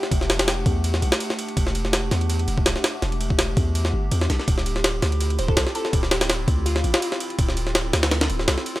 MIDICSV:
0, 0, Header, 1, 5, 480
1, 0, Start_track
1, 0, Tempo, 363636
1, 152, Time_signature, 4, 2, 24, 8
1, 11616, End_track
2, 0, Start_track
2, 0, Title_t, "Synth pluck"
2, 0, Program_c, 0, 84
2, 0, Note_on_c, 0, 67, 95
2, 393, Note_off_c, 0, 67, 0
2, 521, Note_on_c, 0, 67, 91
2, 592, Note_off_c, 0, 67, 0
2, 633, Note_on_c, 0, 67, 79
2, 715, Note_off_c, 0, 67, 0
2, 7112, Note_on_c, 0, 72, 95
2, 7216, Note_off_c, 0, 72, 0
2, 7240, Note_on_c, 0, 69, 92
2, 7312, Note_off_c, 0, 69, 0
2, 7353, Note_on_c, 0, 69, 76
2, 7435, Note_off_c, 0, 69, 0
2, 7594, Note_on_c, 0, 69, 96
2, 7962, Note_off_c, 0, 69, 0
2, 8073, Note_on_c, 0, 67, 95
2, 8364, Note_off_c, 0, 67, 0
2, 8788, Note_on_c, 0, 65, 93
2, 9082, Note_off_c, 0, 65, 0
2, 9158, Note_on_c, 0, 65, 94
2, 9231, Note_off_c, 0, 65, 0
2, 9268, Note_on_c, 0, 65, 80
2, 9353, Note_off_c, 0, 65, 0
2, 11616, End_track
3, 0, Start_track
3, 0, Title_t, "Ambient pad"
3, 0, Program_c, 1, 92
3, 0, Note_on_c, 1, 57, 81
3, 0, Note_on_c, 1, 62, 74
3, 0, Note_on_c, 1, 67, 91
3, 0, Note_on_c, 1, 78, 74
3, 5861, Note_off_c, 1, 57, 0
3, 5861, Note_off_c, 1, 78, 0
3, 5862, Note_off_c, 1, 62, 0
3, 5911, Note_on_c, 1, 60, 81
3, 5911, Note_on_c, 1, 64, 75
3, 5911, Note_on_c, 1, 65, 74
3, 9702, Note_off_c, 1, 67, 0
3, 9751, Note_on_c, 1, 69, 88
3, 11616, Note_off_c, 1, 60, 0
3, 11616, Note_off_c, 1, 64, 0
3, 11616, Note_off_c, 1, 65, 0
3, 11616, Note_off_c, 1, 69, 0
3, 11616, End_track
4, 0, Start_track
4, 0, Title_t, "808-style bass"
4, 0, Program_c, 2, 38
4, 151, Note_on_c, 2, 28, 102
4, 854, Note_off_c, 2, 28, 0
4, 871, Note_on_c, 2, 40, 98
4, 1334, Note_off_c, 2, 40, 0
4, 1349, Note_on_c, 2, 35, 103
4, 1467, Note_off_c, 2, 35, 0
4, 2070, Note_on_c, 2, 28, 100
4, 2773, Note_off_c, 2, 28, 0
4, 2791, Note_on_c, 2, 40, 103
4, 3254, Note_off_c, 2, 40, 0
4, 3273, Note_on_c, 2, 28, 88
4, 3491, Note_off_c, 2, 28, 0
4, 3513, Note_on_c, 2, 26, 97
4, 3629, Note_off_c, 2, 26, 0
4, 3993, Note_on_c, 2, 28, 100
4, 4695, Note_off_c, 2, 28, 0
4, 4711, Note_on_c, 2, 40, 103
4, 5174, Note_off_c, 2, 40, 0
4, 5195, Note_on_c, 2, 31, 101
4, 5411, Note_off_c, 2, 31, 0
4, 5434, Note_on_c, 2, 40, 104
4, 5651, Note_off_c, 2, 40, 0
4, 5674, Note_on_c, 2, 35, 95
4, 5789, Note_off_c, 2, 35, 0
4, 5911, Note_on_c, 2, 26, 101
4, 6614, Note_off_c, 2, 26, 0
4, 6633, Note_on_c, 2, 38, 104
4, 7095, Note_off_c, 2, 38, 0
4, 7113, Note_on_c, 2, 26, 88
4, 7330, Note_off_c, 2, 26, 0
4, 7351, Note_on_c, 2, 36, 97
4, 7468, Note_off_c, 2, 36, 0
4, 7830, Note_on_c, 2, 26, 99
4, 8533, Note_off_c, 2, 26, 0
4, 8550, Note_on_c, 2, 38, 99
4, 9013, Note_off_c, 2, 38, 0
4, 9030, Note_on_c, 2, 33, 105
4, 9148, Note_off_c, 2, 33, 0
4, 9750, Note_on_c, 2, 26, 101
4, 10454, Note_off_c, 2, 26, 0
4, 10473, Note_on_c, 2, 38, 101
4, 10935, Note_off_c, 2, 38, 0
4, 10956, Note_on_c, 2, 26, 89
4, 11172, Note_off_c, 2, 26, 0
4, 11193, Note_on_c, 2, 36, 93
4, 11309, Note_off_c, 2, 36, 0
4, 11616, End_track
5, 0, Start_track
5, 0, Title_t, "Drums"
5, 41, Note_on_c, 9, 38, 48
5, 152, Note_on_c, 9, 36, 107
5, 153, Note_on_c, 9, 51, 87
5, 173, Note_off_c, 9, 38, 0
5, 281, Note_on_c, 9, 38, 39
5, 284, Note_off_c, 9, 36, 0
5, 285, Note_off_c, 9, 51, 0
5, 393, Note_off_c, 9, 38, 0
5, 393, Note_on_c, 9, 38, 108
5, 393, Note_on_c, 9, 51, 80
5, 520, Note_off_c, 9, 38, 0
5, 520, Note_off_c, 9, 51, 0
5, 520, Note_on_c, 9, 38, 109
5, 520, Note_on_c, 9, 51, 82
5, 631, Note_off_c, 9, 38, 0
5, 631, Note_off_c, 9, 51, 0
5, 631, Note_on_c, 9, 38, 120
5, 631, Note_on_c, 9, 51, 91
5, 763, Note_off_c, 9, 38, 0
5, 763, Note_off_c, 9, 51, 0
5, 870, Note_on_c, 9, 36, 97
5, 870, Note_on_c, 9, 51, 69
5, 1002, Note_off_c, 9, 36, 0
5, 1002, Note_off_c, 9, 51, 0
5, 1110, Note_on_c, 9, 51, 85
5, 1239, Note_on_c, 9, 38, 60
5, 1242, Note_off_c, 9, 51, 0
5, 1350, Note_on_c, 9, 51, 72
5, 1371, Note_off_c, 9, 38, 0
5, 1478, Note_on_c, 9, 38, 122
5, 1482, Note_off_c, 9, 51, 0
5, 1589, Note_on_c, 9, 51, 89
5, 1610, Note_off_c, 9, 38, 0
5, 1719, Note_on_c, 9, 38, 57
5, 1721, Note_off_c, 9, 51, 0
5, 1830, Note_on_c, 9, 51, 80
5, 1851, Note_off_c, 9, 38, 0
5, 1960, Note_off_c, 9, 51, 0
5, 1960, Note_on_c, 9, 51, 42
5, 2070, Note_on_c, 9, 36, 109
5, 2071, Note_off_c, 9, 51, 0
5, 2071, Note_on_c, 9, 51, 89
5, 2200, Note_on_c, 9, 38, 41
5, 2202, Note_off_c, 9, 36, 0
5, 2203, Note_off_c, 9, 51, 0
5, 2310, Note_on_c, 9, 51, 72
5, 2332, Note_off_c, 9, 38, 0
5, 2439, Note_on_c, 9, 38, 43
5, 2442, Note_off_c, 9, 51, 0
5, 2549, Note_off_c, 9, 38, 0
5, 2549, Note_on_c, 9, 38, 120
5, 2549, Note_on_c, 9, 51, 90
5, 2681, Note_off_c, 9, 38, 0
5, 2681, Note_off_c, 9, 51, 0
5, 2790, Note_on_c, 9, 38, 60
5, 2790, Note_on_c, 9, 51, 71
5, 2920, Note_off_c, 9, 51, 0
5, 2920, Note_on_c, 9, 51, 44
5, 2922, Note_off_c, 9, 38, 0
5, 3030, Note_off_c, 9, 51, 0
5, 3030, Note_on_c, 9, 51, 89
5, 3160, Note_off_c, 9, 51, 0
5, 3160, Note_on_c, 9, 51, 45
5, 3270, Note_off_c, 9, 51, 0
5, 3270, Note_on_c, 9, 51, 72
5, 3400, Note_on_c, 9, 36, 102
5, 3402, Note_off_c, 9, 51, 0
5, 3510, Note_on_c, 9, 38, 118
5, 3510, Note_on_c, 9, 51, 92
5, 3532, Note_off_c, 9, 36, 0
5, 3640, Note_off_c, 9, 38, 0
5, 3640, Note_on_c, 9, 38, 50
5, 3642, Note_off_c, 9, 51, 0
5, 3749, Note_off_c, 9, 38, 0
5, 3749, Note_on_c, 9, 38, 105
5, 3749, Note_on_c, 9, 51, 80
5, 3881, Note_off_c, 9, 38, 0
5, 3881, Note_off_c, 9, 51, 0
5, 3990, Note_on_c, 9, 38, 52
5, 3990, Note_on_c, 9, 51, 63
5, 4121, Note_off_c, 9, 51, 0
5, 4121, Note_on_c, 9, 51, 41
5, 4122, Note_off_c, 9, 38, 0
5, 4232, Note_off_c, 9, 51, 0
5, 4232, Note_on_c, 9, 51, 71
5, 4360, Note_on_c, 9, 36, 100
5, 4364, Note_off_c, 9, 51, 0
5, 4470, Note_on_c, 9, 38, 119
5, 4470, Note_on_c, 9, 51, 90
5, 4492, Note_off_c, 9, 36, 0
5, 4602, Note_off_c, 9, 38, 0
5, 4602, Note_off_c, 9, 51, 0
5, 4711, Note_on_c, 9, 36, 97
5, 4711, Note_on_c, 9, 51, 70
5, 4843, Note_off_c, 9, 36, 0
5, 4843, Note_off_c, 9, 51, 0
5, 4951, Note_on_c, 9, 51, 88
5, 5080, Note_on_c, 9, 38, 59
5, 5083, Note_off_c, 9, 51, 0
5, 5212, Note_off_c, 9, 38, 0
5, 5432, Note_on_c, 9, 51, 89
5, 5563, Note_on_c, 9, 38, 55
5, 5564, Note_off_c, 9, 51, 0
5, 5674, Note_off_c, 9, 38, 0
5, 5674, Note_on_c, 9, 38, 38
5, 5674, Note_on_c, 9, 51, 70
5, 5801, Note_off_c, 9, 38, 0
5, 5801, Note_on_c, 9, 38, 38
5, 5806, Note_off_c, 9, 51, 0
5, 5910, Note_on_c, 9, 51, 88
5, 5911, Note_on_c, 9, 36, 111
5, 5933, Note_off_c, 9, 38, 0
5, 6041, Note_on_c, 9, 38, 40
5, 6042, Note_off_c, 9, 51, 0
5, 6043, Note_off_c, 9, 36, 0
5, 6152, Note_on_c, 9, 51, 70
5, 6173, Note_off_c, 9, 38, 0
5, 6281, Note_on_c, 9, 38, 43
5, 6284, Note_off_c, 9, 51, 0
5, 6392, Note_off_c, 9, 38, 0
5, 6392, Note_on_c, 9, 38, 121
5, 6392, Note_on_c, 9, 51, 91
5, 6524, Note_off_c, 9, 38, 0
5, 6524, Note_off_c, 9, 51, 0
5, 6632, Note_on_c, 9, 38, 60
5, 6632, Note_on_c, 9, 51, 71
5, 6761, Note_off_c, 9, 51, 0
5, 6761, Note_on_c, 9, 51, 45
5, 6764, Note_off_c, 9, 38, 0
5, 6871, Note_off_c, 9, 51, 0
5, 6871, Note_on_c, 9, 51, 86
5, 7000, Note_off_c, 9, 51, 0
5, 7000, Note_on_c, 9, 51, 45
5, 7110, Note_off_c, 9, 51, 0
5, 7110, Note_on_c, 9, 51, 70
5, 7240, Note_on_c, 9, 36, 99
5, 7242, Note_off_c, 9, 51, 0
5, 7350, Note_on_c, 9, 38, 120
5, 7350, Note_on_c, 9, 51, 90
5, 7372, Note_off_c, 9, 36, 0
5, 7480, Note_off_c, 9, 38, 0
5, 7480, Note_on_c, 9, 38, 50
5, 7482, Note_off_c, 9, 51, 0
5, 7591, Note_on_c, 9, 51, 71
5, 7612, Note_off_c, 9, 38, 0
5, 7720, Note_on_c, 9, 38, 47
5, 7723, Note_off_c, 9, 51, 0
5, 7830, Note_on_c, 9, 36, 112
5, 7830, Note_on_c, 9, 51, 89
5, 7852, Note_off_c, 9, 38, 0
5, 7959, Note_on_c, 9, 38, 40
5, 7962, Note_off_c, 9, 36, 0
5, 7962, Note_off_c, 9, 51, 0
5, 8069, Note_off_c, 9, 38, 0
5, 8069, Note_on_c, 9, 38, 107
5, 8069, Note_on_c, 9, 51, 82
5, 8199, Note_off_c, 9, 38, 0
5, 8199, Note_off_c, 9, 51, 0
5, 8199, Note_on_c, 9, 38, 108
5, 8199, Note_on_c, 9, 51, 82
5, 8310, Note_off_c, 9, 38, 0
5, 8310, Note_off_c, 9, 51, 0
5, 8310, Note_on_c, 9, 38, 122
5, 8310, Note_on_c, 9, 51, 91
5, 8442, Note_off_c, 9, 38, 0
5, 8442, Note_off_c, 9, 51, 0
5, 8550, Note_on_c, 9, 51, 72
5, 8551, Note_on_c, 9, 36, 100
5, 8682, Note_off_c, 9, 51, 0
5, 8683, Note_off_c, 9, 36, 0
5, 8792, Note_on_c, 9, 51, 88
5, 8920, Note_on_c, 9, 38, 61
5, 8924, Note_off_c, 9, 51, 0
5, 9030, Note_on_c, 9, 51, 70
5, 9052, Note_off_c, 9, 38, 0
5, 9159, Note_on_c, 9, 38, 121
5, 9162, Note_off_c, 9, 51, 0
5, 9270, Note_on_c, 9, 51, 90
5, 9291, Note_off_c, 9, 38, 0
5, 9399, Note_on_c, 9, 38, 57
5, 9402, Note_off_c, 9, 51, 0
5, 9509, Note_on_c, 9, 51, 80
5, 9531, Note_off_c, 9, 38, 0
5, 9639, Note_off_c, 9, 51, 0
5, 9639, Note_on_c, 9, 51, 41
5, 9749, Note_off_c, 9, 51, 0
5, 9749, Note_on_c, 9, 51, 88
5, 9750, Note_on_c, 9, 36, 114
5, 9881, Note_off_c, 9, 51, 0
5, 9881, Note_on_c, 9, 38, 41
5, 9882, Note_off_c, 9, 36, 0
5, 9990, Note_on_c, 9, 51, 71
5, 10013, Note_off_c, 9, 38, 0
5, 10120, Note_on_c, 9, 38, 43
5, 10122, Note_off_c, 9, 51, 0
5, 10230, Note_off_c, 9, 38, 0
5, 10230, Note_on_c, 9, 38, 121
5, 10230, Note_on_c, 9, 51, 89
5, 10362, Note_off_c, 9, 38, 0
5, 10362, Note_off_c, 9, 51, 0
5, 10472, Note_on_c, 9, 38, 105
5, 10472, Note_on_c, 9, 51, 81
5, 10600, Note_off_c, 9, 38, 0
5, 10600, Note_off_c, 9, 51, 0
5, 10600, Note_on_c, 9, 38, 105
5, 10600, Note_on_c, 9, 51, 79
5, 10711, Note_off_c, 9, 38, 0
5, 10711, Note_off_c, 9, 51, 0
5, 10711, Note_on_c, 9, 38, 102
5, 10711, Note_on_c, 9, 51, 80
5, 10841, Note_off_c, 9, 38, 0
5, 10841, Note_off_c, 9, 51, 0
5, 10841, Note_on_c, 9, 38, 108
5, 10841, Note_on_c, 9, 51, 82
5, 10951, Note_off_c, 9, 51, 0
5, 10951, Note_on_c, 9, 51, 64
5, 10973, Note_off_c, 9, 38, 0
5, 11080, Note_on_c, 9, 38, 39
5, 11083, Note_off_c, 9, 51, 0
5, 11191, Note_off_c, 9, 38, 0
5, 11191, Note_on_c, 9, 38, 118
5, 11191, Note_on_c, 9, 51, 90
5, 11321, Note_off_c, 9, 38, 0
5, 11321, Note_on_c, 9, 38, 50
5, 11323, Note_off_c, 9, 51, 0
5, 11433, Note_on_c, 9, 51, 71
5, 11453, Note_off_c, 9, 38, 0
5, 11561, Note_on_c, 9, 38, 49
5, 11565, Note_off_c, 9, 51, 0
5, 11616, Note_off_c, 9, 38, 0
5, 11616, End_track
0, 0, End_of_file